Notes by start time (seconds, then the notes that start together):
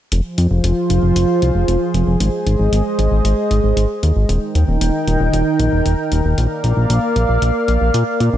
0.12 F1 F3 F4 G#4 C5, closed hi-hat
0.38 F2, closed hi-hat
0.51 F1
0.64 F1, closed hi-hat
0.90 F1, closed hi-hat
1.03 F1
1.16 F1, closed hi-hat
1.42 C2, closed hi-hat
1.55 F1
1.68 F1, closed hi-hat
1.94 F1, closed hi-hat
2.07 F1
2.20 G#1 G#3 C5 D#5, closed hi-hat
2.47 G#1, closed hi-hat
2.60 G#1
2.73 G#1, closed hi-hat
2.99 G#1, closed hi-hat
3.12 G#1
3.25 G#1, closed hi-hat
3.51 G#1, closed hi-hat
3.64 G#1
3.77 G#1, closed hi-hat
4.03 D#2, closed hi-hat
4.16 G#1
4.29 D#1 D#3 D#4 A#4 G5, closed hi-hat
4.55 D#2, closed hi-hat
4.68 D#1
4.81 D#1, closed hi-hat
5.07 D#1, closed hi-hat
5.20 D#1
5.33 D#1, closed hi-hat
5.60 A#1, closed hi-hat
5.73 D#1
5.86 D#1, closed hi-hat
6.12 D#1, closed hi-hat
6.25 D#1
6.38 A#1 A#3 D5 F5, closed hi-hat
6.64 A#1, closed hi-hat
6.77 A#1
6.90 A#1, closed hi-hat
7.16 A#1, closed hi-hat
7.29 A#1
7.42 A#1, closed hi-hat
7.68 A#1, closed hi-hat
7.81 A#1
7.94 A#2, closed hi-hat
8.20 A#2, closed hi-hat
8.33 A#1